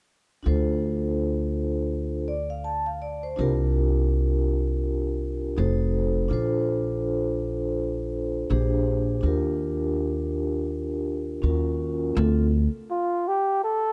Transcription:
0.43 D2 D4 F4 A4
0.48 C5
2.28 D5
2.50 F5
2.64 A5
2.86 F5
3.02 D5
3.23 C5
3.36 C2 D4 F4 G4
3.41 A#4
5.57 F1 D#4 F#4 A4 C5
6.28 A#1 D4 F4 A4
6.33 C5
8.50 A#1 D4 G4 G#4 C5
9.21 D#2 D4 F4 G4
9.26 A#4
11.42 D#2 C#4 F4 F#4 A#4
12.16 D2 C4 D4 F4 A4
12.91 F4
13.28 G4
13.64 A4

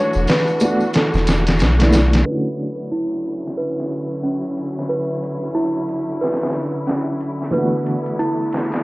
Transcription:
Already playing: E3 A3 D4 F#4 C#5
0.13 E1, tambourine
0.27 B4, snare, open hi-hat, tambourine
0.47 tambourine
0.60 A3 B3 D4, closed hi-hat, tambourine
0.64 F#4
0.80 tambourine
0.93 A4, snare, closed hi-hat, tambourine
1.14 E1, snare, tambourine
1.27 snare, closed hi-hat, tambourine
1.47 snare, closed hi-hat, tambourine
1.59 B1, snare, closed hi-hat, tambourine
1.79 A3 B3 D4 E4, snare, closed hi-hat, tambourine
1.92 A3 B3 D4 E4, snare, closed hi-hat, tambourine
2.13 snare, closed hi-hat, tambourine
2.24 D3 F#3 A3 C#4 E4 B4, closed hi-hat
2.29 E4 F#4
2.60 closed hi-hat
2.80 closed hi-hat
2.92 E4, closed hi-hat
3.26 closed hi-hat
3.47 snare
3.57 B4, closed hi-hat
3.80 snare
3.92 closed hi-hat
4.23 C#4, closed hi-hat
4.44 closed hi-hat
4.58 closed hi-hat
4.79 snare
4.89 B4, closed hi-hat
5.23 closed hi-hat
5.55 E4, open hi-hat
5.89 closed hi-hat
6.21 B4, snare, closed hi-hat
6.32 snare, closed hi-hat
6.42 snare, closed hi-hat
6.48 snare, closed hi-hat
6.55 snare, closed hi-hat
6.87 C#4, snare, closed hi-hat
7.21 closed hi-hat
7.42 snare
7.51 E3 A3 B3 B4, closed hi-hat
7.56 D3 F#4
7.87 closed hi-hat
8.06 closed hi-hat
8.19 E4, closed hi-hat
8.52 snare, closed hi-hat
8.72 snare, closed hi-hat

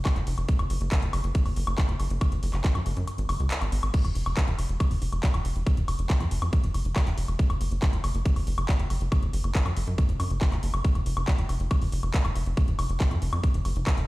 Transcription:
0.05 kick, clap, closed hi-hat, high woodblock
0.16 F1, clap, closed hi-hat
0.27 F1, open hi-hat
0.38 F1, closed hi-hat, high woodblock
0.48 kick, closed hi-hat
0.59 F#1, closed hi-hat, high woodblock
0.70 F#1, open hi-hat
0.81 F#1, closed hi-hat
0.92 kick, clap, closed hi-hat, high woodblock
1.02 F#1, closed hi-hat
1.13 F#1, open hi-hat, high woodblock
1.24 F#1, closed hi-hat
1.35 kick, closed hi-hat
1.46 F#1, open hi-hat, high woodblock
1.56 F#1, open hi-hat
1.67 F#1, closed hi-hat, high woodblock
1.78 kick, clap, closed hi-hat
1.89 F#1, closed hi-hat
2.00 F#1, open hi-hat, high woodblock
2.10 F#1, closed hi-hat
2.21 kick, closed hi-hat, high woodblock
2.32 F#1, closed hi-hat
2.43 F#1, open hi-hat
2.54 F#1, clap, closed hi-hat, high woodblock
2.64 kick, clap, closed hi-hat
2.75 F#2, closed hi-hat, high woodblock
2.86 F#1, open hi-hat
2.97 F#2, closed hi-hat
3.07 closed hi-hat, high woodblock
3.18 G#1, closed hi-hat
3.29 F#1, open hi-hat, high woodblock
3.40 C#2, closed hi-hat
3.51 clap, closed hi-hat
3.61 G#1, clap, closed hi-hat, high woodblock
3.72 G#1, open hi-hat
3.83 G#1, closed hi-hat, high woodblock
3.94 kick, closed hi-hat, crash
4.05 F1, closed hi-hat, high woodblock
4.15 F1, open hi-hat
4.26 F1, closed hi-hat, high woodblock
4.37 kick, clap, closed hi-hat
4.48 F1, closed hi-hat
4.59 F1, open hi-hat, high woodblock
4.69 F1, closed hi-hat
4.80 kick, closed hi-hat, high woodblock
4.91 F1, open hi-hat
5.02 F1, open hi-hat
5.13 F1, closed hi-hat, high woodblock
5.23 kick, clap, closed hi-hat
5.34 F1, closed hi-hat, high woodblock
5.45 F1, open hi-hat
5.56 F1, closed hi-hat
5.67 kick, closed hi-hat, high woodblock
5.77 F1, closed hi-hat
5.88 F1, open hi-hat, high woodblock
5.99 F1, closed hi-hat
6.10 kick, clap, closed hi-hat
6.20 F2, closed hi-hat, high woodblock
6.31 F1, open hi-hat
6.42 F2, closed hi-hat, high woodblock
6.53 kick, closed hi-hat
6.64 F1, closed hi-hat
6.74 F#1, open hi-hat, high woodblock
6.85 F1, closed hi-hat
6.96 kick, clap, closed hi-hat, high woodblock
7.07 F1, clap, closed hi-hat
7.18 F1, open hi-hat
7.28 F1, closed hi-hat, high woodblock
7.39 kick, closed hi-hat
7.50 F#1, closed hi-hat, high woodblock
7.61 F#1, open hi-hat
7.71 F#1, closed hi-hat
7.82 kick, clap, closed hi-hat, high woodblock
7.93 F#1, closed hi-hat
8.04 F#1, open hi-hat, high woodblock
8.15 F#1, closed hi-hat
8.25 kick, closed hi-hat
8.36 F#1, open hi-hat, high woodblock
8.47 F#1, open hi-hat
8.58 F#1, closed hi-hat, high woodblock
8.69 kick, clap, closed hi-hat
8.79 F#1, closed hi-hat
8.90 F#1, open hi-hat, high woodblock
9.01 F#1, closed hi-hat
9.12 kick, closed hi-hat, high woodblock
9.23 F#1, closed hi-hat
9.33 F#1, open hi-hat
9.44 F#1, closed hi-hat, high woodblock
9.55 kick, clap, closed hi-hat
9.66 F#2, closed hi-hat, high woodblock
9.77 F#1, open hi-hat
9.87 F#2, closed hi-hat
9.98 kick, closed hi-hat, high woodblock
10.09 F#1, closed hi-hat
10.20 F#2, open hi-hat, high woodblock
10.30 F#1, closed hi-hat
10.41 kick, clap, closed hi-hat
10.52 F#1, clap, closed hi-hat, high woodblock
10.63 F#1, open hi-hat
10.74 F#1, closed hi-hat, high woodblock
10.84 kick, closed hi-hat
10.95 F1, closed hi-hat, high woodblock
11.06 F1, open hi-hat
11.17 F1, closed hi-hat, high woodblock
11.28 kick, clap, closed hi-hat
11.38 F1, closed hi-hat
11.49 F1, open hi-hat, high woodblock
11.60 F1, closed hi-hat
11.71 kick, closed hi-hat, high woodblock
11.82 F1, open hi-hat
11.92 F1, open hi-hat
12.03 F1, closed hi-hat, high woodblock
12.14 kick, clap, closed hi-hat
12.25 F1, closed hi-hat, high woodblock
12.36 F1, open hi-hat
12.46 F1, closed hi-hat
12.57 kick, closed hi-hat, high woodblock
12.68 F1, closed hi-hat
12.79 F1, open hi-hat, high woodblock
12.90 F1, closed hi-hat
13.00 kick, clap, closed hi-hat
13.11 F2, closed hi-hat, high woodblock
13.22 F1, open hi-hat
13.33 F2, closed hi-hat, high woodblock
13.43 kick, closed hi-hat
13.54 F1, closed hi-hat
13.65 F#1, open hi-hat, high woodblock
13.76 F1, closed hi-hat
13.87 kick, clap, closed hi-hat, high woodblock
13.97 F1, clap, closed hi-hat

